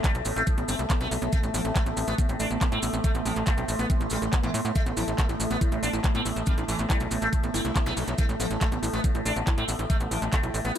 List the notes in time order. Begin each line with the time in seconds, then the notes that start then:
Already playing: A3 A4 E5 A5
0.04 E3 G3 C4, kick, clap, closed hi-hat, maracas
0.15 B1 A2 A3, closed hi-hat, maracas
0.25 A1 A2 B3, open hi-hat, maracas
0.36 A1 A3 C4, closed hi-hat, maracas
0.47 A2 A3, kick, closed hi-hat, maracas
0.58 A1 A2 B3, closed hi-hat, maracas
0.68 G1 C4, open hi-hat, maracas
0.79 C2 A2 A3, closed hi-hat, maracas
0.90 A2 B3, kick, clap, closed hi-hat, maracas
1.00 B1 B3 C4, closed hi-hat, maracas
1.11 B1 A2 A3, open hi-hat, maracas
1.22 B1 A2 B3, closed hi-hat, maracas
1.32 A3 C4, kick, closed hi-hat, maracas
1.43 A1 A2 A3, closed hi-hat, maracas
1.54 A1 F3 B3, open hi-hat, maracas
1.65 A1 A2 C4, closed hi-hat, maracas
1.76 A3, kick, clap, closed hi-hat, maracas
1.86 A1 A2 B3 C6, closed hi-hat, maracas
1.97 A1 A2 C4, open hi-hat, maracas
2.08 A1 A3 B3, closed hi-hat, maracas
2.18 A2 B3, kick, closed hi-hat, maracas
2.29 A1 A2 C4, closed hi-hat, maracas
2.40 A1 A3 D4, open hi-hat, maracas
2.50 A1 A2 B3, closed hi-hat, maracas
2.61 A2 C4, kick, clap, closed hi-hat, maracas
2.72 A2 A3 C4, closed hi-hat, maracas
2.82 A1 A2 B3, open hi-hat, maracas
2.93 A1 A2 C4, closed hi-hat, maracas
3.04 A3, kick, closed hi-hat, maracas
3.15 A1 A2 B3, closed hi-hat, maracas
3.25 A1 F3 C4, open hi-hat, maracas
3.36 A1 A2 A3, clap, closed hi-hat, maracas
3.46 A3 B3, kick, clap, closed hi-hat, maracas
3.57 B1 A2 C4, closed hi-hat, maracas
3.68 A1 A2 A3, open hi-hat, maracas
3.79 A1 B3, closed hi-hat, maracas
3.90 A2 C4, kick, closed hi-hat, maracas
4.01 A1 A2 A3, closed hi-hat, maracas
4.10 A1 G3 A4, open hi-hat, maracas
4.22 A1 A2 A4, closed hi-hat, maracas
4.33 A2 B3, kick, clap, closed hi-hat, maracas
4.43 A2 E3 B3, closed hi-hat, maracas
4.54 A2 A3, open hi-hat, maracas
4.65 A2 B3, closed hi-hat, maracas
4.75 A3, kick, closed hi-hat, maracas
4.86 A1 A2 B3, closed hi-hat, maracas
4.97 A1 F3 E4, open hi-hat, maracas
5.08 A1 A2 A3, closed hi-hat, maracas
5.18 A3 B3, kick, clap, closed hi-hat, maracas
5.29 A1 A2 E4 A5, closed hi-hat, maracas
5.40 A1 A2 A3, open hi-hat, maracas
5.50 A1 B3, closed hi-hat, maracas
5.61 A2 E4, kick, closed hi-hat, maracas
5.72 A1 A2 A3, closed hi-hat, maracas
5.83 A1 B3 D4, open hi-hat, maracas
5.93 A1 A2 C4 E4, closed hi-hat, maracas
6.04 A2 A3 C4, kick, clap, closed hi-hat, maracas
6.15 A2 B3 C4, closed hi-hat, maracas
6.26 A1 A2 C4 E4, open hi-hat, maracas
6.36 A1 A2 A3, closed hi-hat, maracas
6.46 G3 B3 D4, kick, closed hi-hat, maracas
6.58 A1 A2 D4 E4, closed hi-hat, maracas
6.68 A1 E3 A3, open hi-hat, maracas
6.79 A1 A2 B3, clap, closed hi-hat, maracas
6.90 G3 E4, kick, clap, closed hi-hat, maracas
7.00 B1 A2 A3, closed hi-hat, maracas
7.11 A1 A2 B3, open hi-hat, maracas
7.22 A1 A3 E4, closed hi-hat, maracas
7.33 A2 A3, kick, closed hi-hat, maracas
7.43 A1 A2 B3, closed hi-hat, maracas
7.54 G1 C4 E4, open hi-hat, maracas
7.65 C2 A2 A3, closed hi-hat, maracas
7.76 A2 B3, kick, clap, closed hi-hat, maracas
7.86 B1 B3 E4, closed hi-hat, zap, maracas
7.97 B1 A2 A3, open hi-hat, maracas
8.07 B1 A2 B3, closed hi-hat, maracas
8.18 A3 E4, kick, closed hi-hat, maracas
8.29 A1 A2 A3, closed hi-hat, maracas
8.40 A1 F3 B3, open hi-hat, maracas
8.51 A1 A2 E4, closed hi-hat, maracas
8.61 A3, kick, clap, closed hi-hat, maracas
8.72 A1 A2 B3 G5, closed hi-hat, maracas
8.83 A1 A2 E4, open hi-hat, maracas
8.93 A1 A3 B3, closed hi-hat, maracas
9.04 A2 B3, kick, closed hi-hat, maracas
9.15 A1 A2 E4, closed hi-hat, maracas
9.26 A1 A3 D4, open hi-hat, maracas
9.36 A1 A2 B3, closed hi-hat, maracas
9.47 A2 E4, kick, clap, closed hi-hat, maracas
9.57 A2 A3 C4, closed hi-hat, maracas
9.68 A1 A2 B3, open hi-hat, maracas
9.79 A1 A2 E4, closed hi-hat, maracas
9.90 A3, kick, closed hi-hat, maracas
10.00 A1 A2 B3, closed hi-hat, maracas
10.11 A1 F3 E4, open hi-hat, maracas
10.22 A1 A2 A3, clap, closed hi-hat, maracas
10.32 A3 B3, kick, clap, closed hi-hat, maracas
10.43 B1 A2 E4, closed hi-hat, maracas
10.54 A1 A2 A3, open hi-hat, maracas
10.65 A1 B3, closed hi-hat, maracas